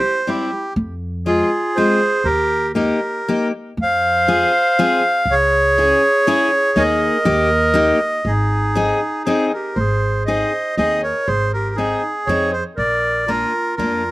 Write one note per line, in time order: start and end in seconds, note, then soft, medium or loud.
0.00 0.22 G4 medium
0.00 0.30 C5 loud
0.27 0.50 G3 medium
0.27 0.50 C4 medium
0.27 0.73 E4 medium
0.27 0.50 E4 medium
0.27 0.74 G4 medium
0.76 1.41 F2 loud
1.26 1.49 G#3 medium
1.26 1.49 C4 medium
1.26 1.49 F4 medium
1.26 1.74 F4 medium
1.26 1.77 G#4 medium
1.76 1.99 G#3 medium
1.76 1.99 C4 medium
1.76 1.99 F4 medium
1.76 2.23 G#4 loud
1.76 2.27 C5 loud
2.24 2.90 D#2 medium
2.24 2.72 G4 loud
2.24 2.72 A#4 loud
2.74 2.99 A#3 medium
2.74 2.99 D#4 medium
2.74 3.48 G4 medium
2.74 2.99 G4 medium
2.74 3.48 A#4 medium
3.28 3.51 A#3 medium
3.28 3.51 D#4 medium
3.28 3.51 G4 medium
3.77 4.43 F2 medium
3.82 5.27 C5 loud
3.82 5.35 F5 loud
4.28 4.51 C4 medium
4.28 4.51 F4 medium
4.28 4.51 G#4 medium
4.79 5.01 C4 medium
4.79 5.01 F4 medium
4.79 5.02 G#4 medium
5.25 5.91 C#2 medium
5.31 6.75 G#4 medium
5.31 6.83 C#5 loud
5.78 6.01 C#4 medium
5.78 6.00 E4 medium
5.78 6.01 G#4 medium
6.27 6.50 C#4 medium
6.27 6.50 E4 medium
6.27 6.50 G#4 medium
6.76 7.08 D#2 medium
6.76 7.16 A#3 medium
6.76 7.16 D#4 medium
6.76 7.17 G#4 medium
6.76 8.23 A#4 loud
6.76 8.31 D#5 loud
7.25 7.90 D#2 loud
7.25 7.49 A#3 medium
7.25 7.49 D#4 soft
7.25 7.49 G4 medium
7.74 7.98 A#3 medium
7.74 7.98 D#4 medium
7.74 7.98 G4 medium
8.25 8.91 G#1 medium
8.25 9.23 G#4 medium
8.29 9.24 D#4 medium
8.75 8.99 C4 medium
8.75 8.99 D#4 medium
8.75 9.00 G#4 medium
9.24 9.50 C4 medium
9.24 9.51 D#4 medium
9.24 9.52 G#4 medium
9.24 9.50 G#4 medium
9.28 9.52 D#4 medium
9.53 9.77 G4 medium
9.53 9.78 A#4 medium
9.76 10.42 G#1 medium
9.76 10.25 G#4 medium
9.76 10.23 C5 medium
10.26 10.51 C4 medium
10.26 10.51 D#4 medium
10.26 10.51 G#4 medium
10.26 10.75 C5 medium
10.26 10.75 D#5 medium
10.77 11.10 D#2 medium
10.77 11.01 C4 medium
10.77 11.01 D#4 medium
10.77 11.01 G#4 medium
10.77 11.03 C5 medium
10.77 11.01 D#5 loud
11.03 11.26 A#4 medium
11.03 11.28 C#5 medium
11.27 11.93 G#1 medium
11.27 11.52 G#4 medium
11.27 11.52 C5 loud
11.54 11.76 G4 medium
11.54 11.76 A#4 medium
11.76 12.01 C4 medium
11.76 12.13 D#4 medium
11.76 12.01 D#4 soft
11.76 12.29 G#4 medium
11.76 12.02 G#4 medium
12.26 12.60 F2 medium
12.26 12.52 C4 medium
12.26 12.52 D#4 medium
12.26 12.51 G#4 medium
12.26 12.52 G#4 medium
12.26 12.51 C#5 medium
12.51 12.63 G#4 medium
12.51 12.64 C5 medium
12.76 13.43 A#1 medium
12.76 13.24 A#4 medium
12.76 13.30 D5 loud
13.27 13.52 A#3 medium
13.27 13.51 D4 medium
13.27 13.74 F4 medium
13.27 13.52 F4 medium
13.27 13.75 A#4 loud
13.76 14.11 F2 medium
13.76 14.02 A#3 medium
13.76 14.02 D4 medium
13.76 14.11 F4 medium
13.76 14.02 F4 medium
13.76 14.11 A#4 medium